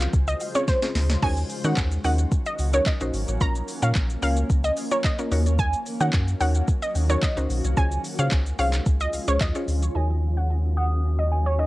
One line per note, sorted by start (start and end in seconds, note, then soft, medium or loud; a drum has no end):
0.00 1.20 C#3 medium
0.00 1.20 F3 medium
0.00 1.20 G#3 medium
0.00 0.28 C4 medium
0.00 0.28 C#4 medium
0.00 0.28 F4 medium
0.00 1.20 F4 medium
0.00 0.28 G#4 medium
0.00 0.28 C5 medium
0.00 1.20 C5 medium
0.00 clap medium
0.00 shaker medium
0.13 0.35 C#2 loud
0.13 kick loud
0.13 closed hi-hat medium
0.13 shaker medium
0.28 0.38 D#5 medium
0.28 closed hi-hat medium
0.28 shaker medium
0.40 open hi-hat medium
0.40 shaker medium
0.55 0.71 C4 medium
0.55 0.71 C#4 medium
0.55 0.71 F4 medium
0.55 0.71 G#4 medium
0.55 0.65 C#5 medium
0.55 0.71 C#5 medium
0.55 closed hi-hat medium
0.55 shaker medium
0.68 1.07 C5 medium
0.68 kick loud
0.68 snare medium
0.68 closed hi-hat medium
0.68 shaker medium
0.82 1.07 C4 medium
0.82 1.07 C#4 medium
0.82 1.07 F4 medium
0.82 1.07 G#4 medium
0.82 1.07 C5 medium
0.82 snare medium
0.82 closed hi-hat medium
0.82 shaker medium
0.95 1.16 D2 loud
0.95 snare loud
0.95 open hi-hat medium
0.95 shaker medium
1.10 snare loud
1.10 shaker medium
1.22 1.44 D#2 loud
1.22 3.39 D#3 medium
1.22 3.39 F#3 medium
1.22 7.73 A#3 medium
1.22 1.47 C#4 medium
1.22 7.73 C#4 medium
1.22 1.47 D#4 medium
1.22 3.39 F#4 medium
1.22 1.48 F#4 medium
1.22 1.48 A#4 medium
1.22 1.48 C#5 medium
1.22 1.44 G#5 loud
1.22 kick loud
1.22 crash medium
1.37 closed hi-hat medium
1.37 shaker medium
1.50 open hi-hat medium
1.50 shaker medium
1.64 1.74 D#3 loud
1.64 1.89 C#4 medium
1.64 1.89 D#4 medium
1.64 1.89 F#4 medium
1.64 1.89 A#4 medium
1.64 1.89 C#5 medium
1.64 1.74 F#5 medium
1.64 closed hi-hat medium
1.64 shaker medium
1.77 1.98 D#2 loud
1.77 kick loud
1.77 clap loud
1.77 closed hi-hat medium
1.77 shaker medium
1.92 closed hi-hat soft
1.92 shaker medium
2.04 2.26 D#2 medium
2.04 2.46 C#4 medium
2.04 2.46 D#4 medium
2.04 2.46 F#4 medium
2.04 2.47 A#4 medium
2.04 2.47 D#5 medium
2.04 2.26 F#5 medium
2.04 open hi-hat medium
2.04 shaker medium
2.18 closed hi-hat medium
2.18 shaker medium
2.32 kick loud
2.32 closed hi-hat medium
2.32 shaker medium
2.46 2.56 D#5 medium
2.46 closed hi-hat medium
2.46 shaker medium
2.59 2.80 C#2 medium
2.59 open hi-hat medium
2.59 shaker medium
2.73 2.89 C#4 medium
2.73 2.89 D#4 medium
2.73 2.89 F#4 medium
2.73 2.89 A#4 medium
2.73 2.83 C#5 medium
2.73 2.89 C#5 medium
2.73 closed hi-hat medium
2.73 shaker medium
2.86 3.26 D#5 medium
2.86 kick loud
2.86 clap loud
2.86 closed hi-hat medium
2.86 shaker medium
3.00 3.11 A#1 medium
3.00 3.25 C#4 medium
3.00 3.25 D#4 medium
3.00 3.25 F#4 medium
3.00 3.25 A#4 medium
3.00 3.25 C5 medium
3.00 closed hi-hat medium
3.00 shaker medium
3.13 3.25 G#1 loud
3.13 open hi-hat medium
3.13 shaker medium
3.28 3.38 A1 medium
3.28 closed hi-hat medium
3.28 shaker medium
3.41 3.62 A#1 loud
3.41 5.30 F3 medium
3.41 3.66 A#3 medium
3.41 3.66 C#4 medium
3.41 3.66 F4 medium
3.41 3.66 A#4 medium
3.41 3.66 C#5 medium
3.41 3.62 A#5 loud
3.41 kick loud
3.41 closed hi-hat medium
3.41 shaker medium
3.55 closed hi-hat medium
3.55 shaker medium
3.68 open hi-hat medium
3.68 shaker medium
3.82 3.92 A#2 loud
3.82 4.07 A#3 medium
3.82 4.07 C#4 medium
3.82 4.07 F4 medium
3.82 4.07 A#4 medium
3.82 4.07 C#5 medium
3.82 3.93 F5 medium
3.82 closed hi-hat medium
3.82 shaker medium
3.95 4.17 A#1 loud
3.95 kick loud
3.95 clap loud
3.95 closed hi-hat medium
3.95 shaker medium
4.10 closed hi-hat soft
4.10 shaker medium
4.22 4.44 C#2 loud
4.22 4.64 A#3 medium
4.22 4.65 C#4 medium
4.22 4.65 F4 medium
4.22 4.65 A#4 medium
4.22 4.65 C#5 medium
4.22 4.44 F5 medium
4.22 open hi-hat medium
4.22 shaker medium
4.37 closed hi-hat medium
4.37 shaker medium
4.50 4.71 C#2 loud
4.50 kick loud
4.50 closed hi-hat medium
4.50 shaker medium
4.64 4.74 D#5 medium
4.64 closed hi-hat medium
4.64 shaker medium
4.77 open hi-hat medium
4.77 shaker medium
4.91 5.07 A#3 medium
4.91 5.07 C#4 medium
4.91 5.07 F4 medium
4.91 5.07 A#4 medium
4.91 5.02 C#5 medium
4.91 5.08 C#5 medium
4.91 closed hi-hat medium
4.91 shaker medium
5.04 5.44 D#5 medium
5.04 kick loud
5.04 clap loud
5.04 closed hi-hat medium
5.04 shaker medium
5.19 5.32 A#3 medium
5.19 5.30 C#4 medium
5.19 5.32 F4 medium
5.19 5.31 A#4 medium
5.19 5.31 C#5 medium
5.19 closed hi-hat soft
5.19 shaker medium
5.31 5.74 D#2 loud
5.31 7.75 D#3 medium
5.31 7.75 F#3 medium
5.31 5.86 C#4 medium
5.31 5.86 D#4 medium
5.31 5.86 F#4 medium
5.31 7.75 F#4 medium
5.31 5.86 A#4 medium
5.31 5.86 C#5 medium
5.31 open hi-hat medium
5.31 shaker medium
5.46 closed hi-hat medium
5.46 shaker medium
5.59 5.80 G#5 loud
5.59 kick loud
5.59 closed hi-hat medium
5.59 shaker medium
5.73 closed hi-hat medium
5.73 shaker medium
5.86 open hi-hat medium
5.86 shaker medium
6.00 6.11 D#3 loud
6.00 6.25 C#4 medium
6.00 6.25 D#4 medium
6.00 6.25 F#4 medium
6.00 6.25 A#4 medium
6.00 6.25 C#5 medium
6.00 6.11 F#5 medium
6.00 closed hi-hat medium
6.00 shaker medium
6.13 6.35 F#2 medium
6.13 kick loud
6.13 clap loud
6.13 closed hi-hat medium
6.13 shaker medium
6.28 closed hi-hat soft
6.28 shaker soft
6.41 6.62 D#2 loud
6.41 6.83 C#4 medium
6.41 6.83 D#4 medium
6.41 6.83 F#4 medium
6.41 6.83 A#4 medium
6.41 6.83 C#5 medium
6.41 6.62 F#5 medium
6.41 open hi-hat medium
6.41 shaker medium
6.55 closed hi-hat soft
6.55 shaker medium
6.68 kick loud
6.68 closed hi-hat medium
6.68 shaker medium
6.82 6.92 D#5 medium
6.82 closed hi-hat medium
6.82 shaker medium
6.95 7.17 D#2 medium
6.95 open hi-hat medium
6.95 shaker medium
7.10 7.25 C#4 medium
7.10 7.26 D#4 medium
7.10 7.26 F#4 medium
7.10 7.26 A#4 medium
7.10 7.20 C#5 medium
7.10 7.26 C#5 medium
7.10 closed hi-hat medium
7.10 shaker medium
7.22 7.62 D#5 medium
7.22 kick loud
7.22 clap loud
7.22 closed hi-hat medium
7.22 shaker medium
7.37 7.47 C#2 medium
7.37 7.61 C#4 medium
7.37 7.62 D#4 medium
7.37 7.62 F#4 medium
7.37 7.62 A#4 medium
7.37 7.62 C5 medium
7.37 closed hi-hat medium
7.37 shaker medium
7.50 7.61 B1 loud
7.50 open hi-hat medium
7.50 shaker medium
7.64 7.74 C2 medium
7.64 closed hi-hat medium
7.64 shaker medium
7.77 7.98 C#2 loud
7.77 9.93 C#3 medium
7.77 9.93 F3 medium
7.77 9.93 G#3 medium
7.77 8.02 C#4 medium
7.77 9.93 C#4 medium
7.77 8.02 F4 medium
7.77 9.93 F4 medium
7.77 8.02 G#4 medium
7.77 8.02 C5 medium
7.77 8.02 C#5 medium
7.77 7.98 G#5 loud
7.77 kick loud
7.77 closed hi-hat medium
7.77 shaker medium
7.92 closed hi-hat medium
7.92 shaker medium
8.04 open hi-hat medium
8.04 shaker medium
8.19 8.29 C#3 loud
8.19 8.43 C#4 medium
8.19 8.43 F4 medium
8.19 8.43 G#4 medium
8.19 8.44 C5 medium
8.19 8.44 C#5 medium
8.19 8.29 F5 medium
8.19 closed hi-hat medium
8.19 shaker medium
8.31 8.53 C#2 medium
8.31 kick loud
8.31 clap loud
8.31 closed hi-hat medium
8.31 shaker medium
8.46 closed hi-hat soft
8.46 shaker medium
8.59 8.80 C2 loud
8.59 9.01 C#4 medium
8.59 9.01 F4 medium
8.59 9.01 G#4 medium
8.59 9.01 C5 medium
8.59 9.01 C#5 medium
8.59 8.80 F5 medium
8.59 open hi-hat medium
8.59 shaker medium
8.73 clap medium
8.73 closed hi-hat medium
8.73 shaker medium
8.86 9.07 C#2 loud
8.86 kick loud
8.86 closed hi-hat medium
8.86 shaker medium
9.00 9.11 D#5 medium
9.00 closed hi-hat medium
9.00 shaker medium
9.13 9.19 C#2 medium
9.13 open hi-hat medium
9.13 shaker medium
9.28 9.38 C#2 loud
9.28 9.44 C#4 medium
9.28 9.44 F4 medium
9.28 9.44 G#4 medium
9.28 9.44 C5 medium
9.28 9.38 C#5 medium
9.28 9.44 C#5 medium
9.28 closed hi-hat medium
9.28 shaker medium
9.41 9.52 D#2 loud
9.41 9.80 D#5 medium
9.41 kick loud
9.41 clap loud
9.41 closed hi-hat medium
9.41 shaker medium
9.55 9.80 C#4 medium
9.55 9.80 F4 medium
9.55 9.80 G#4 medium
9.55 9.80 C5 medium
9.55 9.80 C#5 medium
9.55 closed hi-hat medium
9.55 shaker medium
9.68 9.89 D2 medium
9.68 open hi-hat medium
9.68 shaker medium
9.82 closed hi-hat medium
9.82 shaker medium
9.95 11.67 D#2 medium
9.95 11.67 D#3 medium
9.95 11.67 F#3 medium
9.95 11.67 A#3 medium
9.95 11.67 C#4 medium
9.95 11.55 D#4 medium
9.95 11.56 F#4 medium
9.95 11.67 F#4 medium
9.95 11.56 A#4 medium
9.95 11.56 C#5 medium
9.95 10.17 G#5 loud
10.37 10.47 F#5 medium
10.77 10.98 F#5 medium
10.77 11.33 D#6 loud
11.19 11.29 D#5 medium
11.32 11.67 G#5 medium
11.46 11.56 C#5 medium
11.59 11.67 D#4 soft
11.59 11.67 F#4 soft
11.59 11.67 A#4 soft
11.59 11.67 C#5 medium
11.59 11.67 D#5 medium